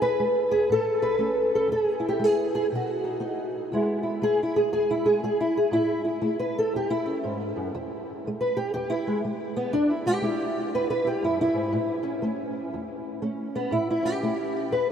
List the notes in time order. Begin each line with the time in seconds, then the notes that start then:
Already playing: E2 G#4
0.02 B4
0.19 G#3
0.51 G#4
0.69 A2 A4
1.02 B4
1.18 A3 C#4
1.55 A4
1.68 E2
1.72 G#4
2.00 E4
2.09 G4
2.19 G#3
2.24 G#4
2.55 G#4
2.72 B2 F#4
3.04 D#4
3.20 B3 D#4
3.72 E2 G#3 B3 E4
4.03 E4
4.22 G#3 G#4
4.43 E4
4.56 G#4
4.72 E2 G#4
4.91 E4
5.05 G#3 G#4
5.23 G#3 G#4
5.40 E4
5.57 G#4
5.71 A2 E4
6.04 E4
6.21 A3 E4
6.39 B4
6.58 A4
6.74 E2 G4
6.90 E4
7.06 C#4
7.24 G#2
7.56 F#2
7.75 E2
8.27 G#3
8.41 B4
8.57 G4
8.74 E2 G4
8.90 E4
9.07 G#3
9.24 G#3
9.56 B3
9.73 E2 D4
9.89 E4
10.06 G#3 G4
10.22 G#3 E4
10.74 E2 B4
10.90 B4
11.04 E4 G4
11.23 F#2 E4
11.41 E4
11.53 G#2
11.72 A2
12.03 C#4
12.22 A3 C#4
12.74 E2
13.22 A3 C#4
13.55 B3
13.71 A2 E4
13.90 E4
14.02 C#4 G4
14.23 A3 E4
14.70 E2 B4